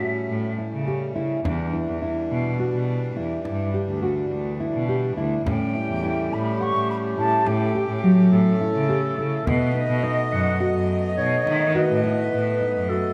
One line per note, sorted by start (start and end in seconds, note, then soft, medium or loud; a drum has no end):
0.00 0.11 A2 medium
0.00 1.40 G3 medium
0.00 1.41 A3 medium
0.00 1.40 C#4 medium
0.00 0.49 F#4 medium
0.00 0.55 E5 medium
0.30 0.54 A2 medium
0.58 0.83 E4 medium
0.73 1.09 C#3 medium
0.87 1.11 G4 medium
0.87 frame drum soft
1.16 1.40 C#3 medium
1.16 1.40 E4 medium
1.16 frame drum soft
1.45 1.69 E2 medium
1.45 5.42 E3 medium
1.45 7.43 G3 medium
1.45 5.42 D4 medium
1.45 1.69 D4 medium
1.45 frame drum medium
1.73 1.98 E4 medium
1.88 2.12 E2 medium
2.02 2.50 E4 medium
2.31 2.55 B2 medium
2.59 3.08 F#4 medium
2.74 3.10 B2 medium
2.88 frame drum soft
3.16 3.40 E2 medium
3.16 3.41 E4 medium
3.45 3.69 G2 medium
3.45 3.69 E4 medium
3.45 frame drum soft
3.74 3.98 G4 medium
3.74 frame drum soft
3.88 4.24 D2 medium
4.03 4.51 F#4 medium
4.31 4.67 D2 medium
4.60 4.84 E4 medium
4.74 5.10 B2 medium
4.89 5.13 G4 medium
4.89 frame drum soft
5.17 5.41 D2 medium
5.17 5.42 E4 medium
5.17 frame drum soft
5.46 5.70 A2 medium
5.46 13.13 A3 medium
5.46 9.43 C#4 medium
5.46 5.70 C#4 medium
5.46 8.29 G4 medium
5.46 6.34 G5 medium
5.46 frame drum medium
5.75 5.99 E4 medium
5.89 6.24 E2 medium
6.03 6.52 E4 medium
6.32 6.67 A2 medium
6.32 6.63 B5 medium
6.61 7.09 F#5 medium
6.61 6.89 C#6 loud
6.75 7.10 A2 medium
6.90 6.96 B5 medium
7.17 7.30 A2 medium
7.17 7.42 E4 medium
7.17 7.49 A5 medium
7.46 7.82 A2 loud
7.46 7.71 E4 medium
7.46 9.45 A4 medium
7.46 8.61 G5 medium
7.46 frame drum soft
7.75 7.99 G4 medium
7.75 frame drum soft
7.89 8.13 A2 medium
8.03 8.52 F#3 medium
8.32 8.56 A2 medium
8.32 9.48 A4 medium
8.61 8.85 E4 medium
8.75 9.11 C#3 medium
8.89 9.13 G4 medium
8.89 frame drum soft
9.18 9.41 C#3 medium
9.18 9.42 E4 medium
9.18 frame drum soft
9.46 9.70 B2 medium
9.46 13.13 B3 medium
9.46 9.71 B3 medium
9.46 10.05 B4 medium
9.46 13.13 D#5 medium
9.46 10.33 D#5 loud
9.46 frame drum medium
9.75 9.99 D#4 medium
9.89 10.13 B2 medium
10.03 10.52 D#4 medium
10.03 10.91 D#5 loud
10.32 10.56 F#2 medium
10.32 10.62 F#5 loud
10.32 frame drum soft
10.60 11.09 F#4 medium
10.60 12.89 D#5 medium
10.60 frame drum soft
10.75 11.11 F#2 medium
11.18 11.42 B2 medium
11.18 11.42 D#4 medium
11.18 11.71 C#5 medium
11.46 11.71 D#3 loud
11.46 11.71 D#4 medium
11.46 frame drum soft
11.75 11.99 F#4 medium
11.75 12.91 B4 medium
11.75 frame drum soft
11.90 12.25 A2 medium
12.04 12.52 E4 medium
12.33 12.68 A2 medium
12.61 12.85 D#4 medium
12.61 frame drum soft
12.76 13.11 F#2 medium
12.89 13.13 F#4 medium
12.89 13.13 A4 medium
12.89 frame drum soft